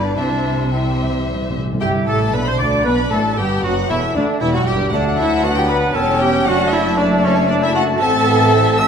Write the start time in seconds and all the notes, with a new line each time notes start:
Already playing: G1 G2 G3 B3 D4 B4 D5
0.04 D4
0.16 C2 C3 G3 C4 D4 E4 C5 E5
0.31 C3
0.55 C3
0.63 C3
0.71 G3 C4 E4 C5 E5
0.79 C3
0.87 C3
0.95 C3
1.03 C3
1.10 C3
1.18 C3
1.27 C3
1.34 C3
1.42 C3
1.50 C3
1.57 C3
1.65 C3
1.73 C3
1.80 G1 G2 G3 E4 G4 G5
2.06 A1 A2 A3 A4 A5
2.33 B1 B2 B3 D4 B4 B5
2.46 C3 C4 C5 C6
2.59 D2 D3 D4 D5 D6
2.84 B1 B2 B3 B4 B5
3.11 A1 A2 A3 A4 A5
3.36 G1 G2 G3 B3 G4 G5
3.63 F#1 F#2 F#3 F#4 F#5
3.89 E1 E2 E3 A3 E4 E5
4.15 D2 D3 D4 D5
4.40 E1 E2 E3 G3 E4 E5
4.53 F#2 F#3 F#4 F#5
4.65 G1 G2 G3 G4 G5
4.91 D2 F#3 A3 D4 D5 F#5
5.17 E4 E5
5.43 B3 F#4 F#5
5.56 G4 G5
5.69 B4 B5
5.93 E1 E2 G3 C#4 A4 C#5 G5 A5
6.21 G4 G5
6.46 F#1 F#2 A3 D4 F#4 D5 F#5 A5
6.72 E4 E5
6.98 A3 D4 D5
7.23 C#4 C#5
7.49 D4 D5
7.63 E4 E5
7.75 F#4 F#5
8.00 A1 A2 A3 C4 A4 E5 A5
8.27 B3
8.54 C4
8.80 A3 E5 E6